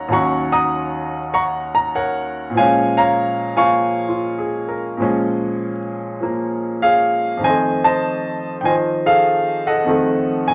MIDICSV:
0, 0, Header, 1, 2, 480
1, 0, Start_track
1, 0, Key_signature, -5, "minor"
1, 0, Tempo, 609137
1, 80, Time_signature, 4, 2, 24, 8
1, 8308, End_track
2, 0, Start_track
2, 0, Title_t, "Grand piano"
2, 0, Program_c, 0, 0
2, 0, Note_on_c, 0, 58, 43
2, 0, Note_on_c, 0, 61, 65
2, 0, Note_on_c, 0, 63, 51
2, 0, Note_on_c, 0, 73, 65
2, 0, Note_on_c, 0, 78, 67
2, 0, Note_on_c, 0, 82, 97
2, 68, Note_on_c, 0, 39, 63
2, 80, Note_on_c, 0, 51, 54
2, 83, Note_off_c, 0, 58, 0
2, 83, Note_off_c, 0, 61, 0
2, 83, Note_off_c, 0, 82, 0
2, 86, Note_off_c, 0, 78, 0
2, 87, Note_off_c, 0, 63, 0
2, 94, Note_on_c, 0, 54, 55
2, 94, Note_on_c, 0, 82, 72
2, 97, Note_on_c, 0, 78, 72
2, 103, Note_on_c, 0, 61, 66
2, 103, Note_on_c, 0, 85, 95
2, 389, Note_off_c, 0, 85, 0
2, 400, Note_off_c, 0, 78, 0
2, 402, Note_off_c, 0, 82, 0
2, 412, Note_on_c, 0, 78, 75
2, 413, Note_on_c, 0, 87, 95
2, 414, Note_on_c, 0, 82, 76
2, 539, Note_off_c, 0, 73, 0
2, 1041, Note_off_c, 0, 82, 0
2, 1047, Note_off_c, 0, 78, 0
2, 1053, Note_on_c, 0, 82, 69
2, 1055, Note_on_c, 0, 85, 91
2, 1058, Note_on_c, 0, 78, 68
2, 1068, Note_off_c, 0, 87, 0
2, 1125, Note_off_c, 0, 85, 0
2, 1365, Note_off_c, 0, 82, 0
2, 1376, Note_on_c, 0, 82, 94
2, 1520, Note_off_c, 0, 82, 0
2, 1529, Note_off_c, 0, 78, 0
2, 1536, Note_on_c, 0, 73, 61
2, 1540, Note_on_c, 0, 70, 68
2, 1541, Note_on_c, 0, 78, 87
2, 1970, Note_on_c, 0, 46, 59
2, 1979, Note_off_c, 0, 73, 0
2, 1981, Note_off_c, 0, 70, 0
2, 1981, Note_off_c, 0, 78, 0
2, 1997, Note_on_c, 0, 53, 56
2, 1998, Note_off_c, 0, 39, 0
2, 2003, Note_off_c, 0, 51, 0
2, 2010, Note_off_c, 0, 54, 0
2, 2015, Note_off_c, 0, 61, 0
2, 2027, Note_on_c, 0, 56, 59
2, 2027, Note_on_c, 0, 73, 68
2, 2027, Note_on_c, 0, 80, 95
2, 2031, Note_on_c, 0, 77, 65
2, 2054, Note_on_c, 0, 61, 68
2, 2329, Note_off_c, 0, 77, 0
2, 2330, Note_off_c, 0, 73, 0
2, 2341, Note_on_c, 0, 77, 69
2, 2342, Note_on_c, 0, 73, 74
2, 2344, Note_off_c, 0, 80, 0
2, 2345, Note_on_c, 0, 82, 106
2, 2783, Note_off_c, 0, 82, 0
2, 2789, Note_off_c, 0, 53, 0
2, 2801, Note_on_c, 0, 53, 47
2, 2803, Note_off_c, 0, 77, 0
2, 2811, Note_on_c, 0, 80, 72
2, 2815, Note_on_c, 0, 77, 74
2, 2817, Note_on_c, 0, 85, 100
2, 2824, Note_on_c, 0, 58, 50
2, 3219, Note_on_c, 0, 65, 48
2, 3262, Note_off_c, 0, 73, 0
2, 3456, Note_on_c, 0, 68, 49
2, 3548, Note_off_c, 0, 65, 0
2, 3691, Note_on_c, 0, 70, 52
2, 3823, Note_off_c, 0, 68, 0
2, 3906, Note_off_c, 0, 46, 0
2, 3918, Note_on_c, 0, 46, 61
2, 3920, Note_off_c, 0, 53, 0
2, 3931, Note_off_c, 0, 56, 0
2, 3932, Note_on_c, 0, 53, 57
2, 3936, Note_off_c, 0, 58, 0
2, 3943, Note_on_c, 0, 56, 59
2, 3944, Note_off_c, 0, 61, 0
2, 3956, Note_on_c, 0, 61, 73
2, 4024, Note_off_c, 0, 70, 0
2, 4873, Note_off_c, 0, 53, 0
2, 4884, Note_on_c, 0, 53, 45
2, 4908, Note_on_c, 0, 58, 51
2, 5340, Note_off_c, 0, 80, 0
2, 5342, Note_off_c, 0, 77, 0
2, 5376, Note_on_c, 0, 77, 89
2, 5377, Note_on_c, 0, 73, 58
2, 5381, Note_on_c, 0, 68, 61
2, 5451, Note_off_c, 0, 85, 0
2, 5810, Note_on_c, 0, 41, 52
2, 5821, Note_off_c, 0, 73, 0
2, 5823, Note_off_c, 0, 68, 0
2, 5837, Note_on_c, 0, 51, 46
2, 5843, Note_off_c, 0, 46, 0
2, 5846, Note_off_c, 0, 53, 0
2, 5856, Note_off_c, 0, 56, 0
2, 5858, Note_off_c, 0, 58, 0
2, 5862, Note_off_c, 0, 61, 0
2, 5865, Note_on_c, 0, 75, 62
2, 5865, Note_on_c, 0, 80, 94
2, 5866, Note_off_c, 0, 77, 0
2, 5866, Note_on_c, 0, 72, 65
2, 5867, Note_on_c, 0, 60, 44
2, 5899, Note_on_c, 0, 57, 54
2, 6153, Note_off_c, 0, 80, 0
2, 6169, Note_off_c, 0, 72, 0
2, 6172, Note_off_c, 0, 75, 0
2, 6181, Note_on_c, 0, 72, 68
2, 6181, Note_on_c, 0, 81, 94
2, 6184, Note_on_c, 0, 75, 70
2, 6745, Note_off_c, 0, 81, 0
2, 6784, Note_on_c, 0, 79, 64
2, 6793, Note_off_c, 0, 51, 0
2, 6804, Note_on_c, 0, 51, 47
2, 6806, Note_off_c, 0, 75, 0
2, 6807, Note_off_c, 0, 72, 0
2, 6814, Note_off_c, 0, 79, 0
2, 6815, Note_on_c, 0, 53, 44
2, 6818, Note_on_c, 0, 75, 58
2, 6818, Note_on_c, 0, 80, 84
2, 6819, Note_on_c, 0, 72, 57
2, 6888, Note_off_c, 0, 80, 0
2, 7140, Note_on_c, 0, 68, 67
2, 7142, Note_on_c, 0, 69, 62
2, 7143, Note_on_c, 0, 77, 89
2, 7608, Note_off_c, 0, 69, 0
2, 7609, Note_off_c, 0, 75, 0
2, 7619, Note_on_c, 0, 78, 84
2, 7620, Note_on_c, 0, 69, 63
2, 7621, Note_on_c, 0, 75, 62
2, 7627, Note_off_c, 0, 77, 0
2, 7740, Note_off_c, 0, 72, 0
2, 7744, Note_off_c, 0, 41, 0
2, 7756, Note_on_c, 0, 41, 59
2, 7759, Note_off_c, 0, 51, 0
2, 7769, Note_off_c, 0, 53, 0
2, 7770, Note_on_c, 0, 51, 58
2, 7772, Note_off_c, 0, 60, 0
2, 7783, Note_off_c, 0, 57, 0
2, 7784, Note_on_c, 0, 60, 56
2, 7795, Note_on_c, 0, 57, 68
2, 8059, Note_off_c, 0, 68, 0
2, 8255, Note_on_c, 0, 80, 89
2, 8270, Note_off_c, 0, 78, 0
2, 8308, Note_off_c, 0, 41, 0
2, 8308, Note_off_c, 0, 51, 0
2, 8308, Note_off_c, 0, 57, 0
2, 8308, Note_off_c, 0, 60, 0
2, 8308, Note_off_c, 0, 69, 0
2, 8308, Note_off_c, 0, 75, 0
2, 8308, Note_off_c, 0, 80, 0
2, 8308, End_track
0, 0, End_of_file